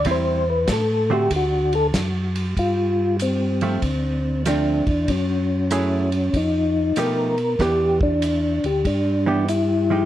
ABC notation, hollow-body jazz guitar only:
X:1
M:4/4
L:1/8
Q:"Swing" 1/4=96
K:Ephr
V:1 name="Hollow-body jazz guitar"
[G,CE] z2 [D,A,C^F] z4 | z3 [F,A,C] z2 [F,A,C] z | z2 [^F,A,E^G] z3 [=F,A,_E=G] z | [E,B,DG] z4 [E,B,DG] z [F,_A,_EG] |]